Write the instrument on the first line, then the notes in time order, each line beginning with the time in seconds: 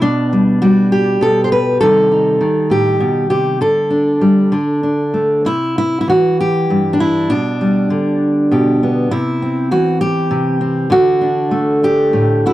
steel-string acoustic guitar
0.01 B2 D4
0.33 G3
0.62 G3 F#4
0.92 G4
1.21 B2 A4
1.44 C5
1.52 B4
1.81 C3 D#3 G3 D#4 A4
2.12 D#4
2.41 D#3
2.70 A2 G4
3.00 B2
3.30 C3 G4
3.61 D3 A4
3.90 D4
4.21 G3
4.52 D3 D4
4.83 D4
5.14 A3
5.45 C3 E4
5.78 E4
6.01 E4
6.08 E3 F#4
6.41 G4
6.70 G2
6.93 D4
7.00 E4
7.30 B2 D4
7.61 G3
7.90 D3
8.51 B2 G4
8.83 B3
9.11 C3 E4
9.42 C4
9.71 E3 F#4
10.01 G4
10.31 C3
10.61 C4
10.90 D3 F#4
11.21 D4
11.51 A3
11.83 D4 G4
12.13 A2
12.46 E4 F#4